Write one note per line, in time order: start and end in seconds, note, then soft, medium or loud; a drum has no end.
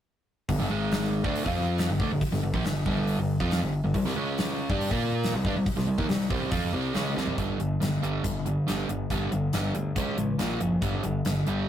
0.49 0.59 G1 medium
0.49 0.60 G2 medium
0.49 0.60 D3 medium
0.49 kick medium
0.49 open hi-hat medium
0.61 0.70 G1 medium
0.61 0.71 G2 medium
0.61 0.71 D3 medium
0.71 1.21 G#1 medium
0.71 1.24 G#2 medium
0.71 1.24 D#3 medium
0.71 1.25 G#3 medium
0.92 snare loud
0.92 open hi-hat medium
1.04 snare soft
1.24 1.44 D2 medium
1.24 1.46 D3 medium
1.24 1.46 A3 medium
1.24 1.46 D4 loud
1.24 kick loud
1.36 open hi-hat medium
1.46 1.86 F2 medium
1.46 1.89 F3 medium
1.46 1.89 C4 medium
1.46 1.90 F4 loud
1.46 kick medium
1.78 snare loud
1.78 open hi-hat medium
1.89 1.99 G1 medium
1.89 2.00 G2 medium
1.89 2.00 D3 medium
2.00 2.10 D2 medium
2.00 2.10 D3 medium
2.00 2.11 A3 medium
2.00 kick loud
2.11 2.20 G1 medium
2.11 2.21 G2 medium
2.11 2.22 D3 medium
2.21 muted picked electric bass stroke soft
2.21 muted overdriven electric guitar stroke medium
2.21 muted distorted electric guitar stroke medium
2.21 kick loud
2.21 open hi-hat medium
2.32 2.42 G1 medium
2.32 2.42 G2 medium
2.32 2.43 D3 medium
2.32 snare soft
2.43 2.53 G1 medium
2.43 2.54 G2 medium
2.43 2.54 D3 medium
2.54 2.64 A#1 medium
2.54 2.64 A#2 medium
2.54 2.64 F3 loud
2.54 kick loud
2.64 2.85 G1 medium
2.64 2.82 G2 medium
2.64 2.83 D3 medium
2.64 snare loud
2.64 open hi-hat medium
2.86 3.16 G1 medium
2.86 3.18 G2 medium
2.86 3.19 D3 medium
2.86 3.19 G3 medium
2.86 kick loud
3.07 open hi-hat medium
3.18 3.38 G1 medium
3.18 3.36 G2 medium
3.18 3.37 D3 medium
3.40 3.60 F2 medium
3.40 3.61 F3 medium
3.40 3.62 C4 medium
3.40 3.62 F4 medium
3.40 kick loud
3.51 snare loud
3.51 open hi-hat soft
3.62 3.82 G1 medium
3.62 3.80 G2 medium
3.62 3.80 D3 medium
3.84 3.93 G1 medium
3.84 3.95 G2 medium
3.84 3.95 D3 medium
3.94 4.04 C2 medium
3.94 4.05 C3 medium
3.94 4.05 G3 medium
3.94 kick medium
3.94 open hi-hat medium
4.05 4.15 C2 loud
4.05 4.16 C3 medium
4.05 4.16 G3 loud
4.05 snare soft
4.16 4.66 C#2 medium
4.16 4.70 C#3 medium
4.16 4.70 G#3 loud
4.16 4.70 C#4 loud
4.38 snare loud
4.38 open hi-hat medium
4.70 4.90 G2 medium
4.70 4.91 G3 medium
4.70 4.91 D4 loud
4.70 4.91 G4 loud
4.70 kick loud
4.81 open hi-hat medium
4.91 5.31 A#2 medium
4.91 5.34 A#3 medium
4.91 5.35 F4 medium
4.91 5.35 A#4 medium
4.91 kick loud
5.23 snare loud
5.23 open hi-hat medium
5.34 5.44 C2 medium
5.34 5.46 C3 medium
5.34 5.46 G3 medium
5.45 5.55 G2 medium
5.45 5.56 G3 medium
5.45 5.56 D4 loud
5.45 kick loud
5.55 5.65 C2 medium
5.55 5.67 C3 medium
5.55 5.67 G3 medium
5.66 muted picked electric bass stroke soft
5.66 muted overdriven electric guitar stroke medium
5.66 muted distorted electric guitar stroke medium
5.66 kick loud
5.66 open hi-hat medium
5.77 5.87 C2 medium
5.77 5.87 C3 medium
5.77 5.88 G3 medium
5.77 snare soft
5.88 5.98 C2 medium
5.88 5.99 C3 medium
5.88 5.99 G3 medium
5.98 6.08 D#2 medium
5.98 6.09 D#3 medium
5.98 6.09 A#3 medium
5.98 kick loud
6.09 6.29 C2 medium
6.09 6.27 C3 medium
6.09 6.27 G3 medium
6.09 snare loud
6.09 open hi-hat medium
6.21 snare soft
6.30 6.51 C2 medium
6.30 6.52 C3 medium
6.30 6.52 G3 medium
6.30 6.52 C4 medium
6.30 kick loud
6.51 6.72 F2 medium
6.51 6.73 F3 medium
6.51 6.74 C4 medium
6.51 6.74 F4 loud
6.51 kick loud
6.51 open hi-hat medium
6.74 6.94 C2 medium
6.74 6.95 C3 medium
6.74 6.95 G3 medium
6.74 6.95 C4 medium
6.94 7.15 C#2 medium
6.94 7.16 C#3 medium
6.94 7.16 G#3 medium
6.94 7.17 C#4 loud
6.94 snare loud
6.94 open hi-hat soft
7.17 7.37 C2 medium
7.17 7.38 C3 medium
7.17 7.38 G3 medium
7.17 7.38 C4 medium
7.17 snare medium
7.27 floor tom medium
7.38 7.54 G1 medium
7.38 7.59 G2 medium
7.38 7.59 D3 medium
7.38 7.59 G3 loud
7.38 kick loud
7.38 closed hi-hat medium
7.60 7.76 G1 medium
7.60 7.80 G2 medium
7.60 7.80 D3 medium
7.60 closed hi-hat medium
7.81 7.97 G1 medium
7.81 8.01 G2 medium
7.81 8.01 D3 medium
7.81 snare loud
7.81 closed hi-hat medium
8.03 8.19 G1 medium
8.03 8.23 G2 medium
8.03 8.23 D3 medium
8.03 8.24 G3 medium
8.03 closed hi-hat medium
8.24 8.56 G1 medium
8.24 8.44 G2 medium
8.24 8.44 D3 medium
8.24 kick loud
8.24 closed hi-hat medium
8.46 8.66 G2 medium
8.46 8.66 D3 medium
8.46 closed hi-hat medium
8.68 8.84 G1 medium
8.68 8.88 G2 medium
8.68 8.88 D3 medium
8.68 8.88 G3 medium
8.68 snare medium
8.68 closed hi-hat medium
8.89 9.05 G1 medium
8.89 9.09 G2 medium
8.89 9.09 D3 medium
8.89 closed hi-hat medium
9.10 9.26 G1 medium
9.10 9.31 G2 medium
9.10 9.31 D3 medium
9.10 9.31 G3 medium
9.10 kick loud
9.10 closed hi-hat medium
9.32 9.48 G1 medium
9.32 9.52 G2 medium
9.32 9.52 D3 medium
9.32 closed hi-hat medium
9.53 9.70 G1 medium
9.53 9.74 G2 medium
9.53 9.74 D3 medium
9.53 9.74 G3 medium
9.53 snare loud
9.53 closed hi-hat medium
9.75 9.91 D2 medium
9.75 9.95 G2 medium
9.75 9.95 D3 medium
9.75 closed hi-hat medium
9.96 10.12 C#2 medium
9.96 10.17 C#3 medium
9.96 10.17 G#3 medium
9.96 10.17 C#4 loud
9.96 kick loud
9.96 closed hi-hat medium
10.17 10.33 A1 medium
10.17 10.38 C#3 medium
10.17 10.38 G#3 medium
10.17 closed hi-hat medium
10.38 10.55 A#1 medium
10.38 10.60 A#2 medium
10.38 10.60 F3 medium
10.38 10.60 A#3 medium
10.38 snare medium
10.38 closed hi-hat medium
10.60 10.77 F#1 medium
10.60 10.81 A#2 medium
10.60 10.81 F3 medium
10.60 closed hi-hat medium
10.82 10.98 G1 medium
10.82 11.03 G2 medium
10.82 11.03 D3 medium
10.82 11.03 G3 medium
10.82 kick loud
10.82 closed hi-hat medium
11.03 11.20 G1 medium
11.03 11.24 G2 medium
11.03 11.24 D3 medium
11.03 closed hi-hat medium
11.25 11.41 G1 medium
11.25 11.45 G2 medium
11.25 11.45 D3 medium
11.25 snare loud
11.25 closed hi-hat medium
11.47 11.63 G1 medium
11.47 11.67 G2 medium
11.47 11.67 D3 medium
11.47 11.68 G3 medium
11.47 closed hi-hat medium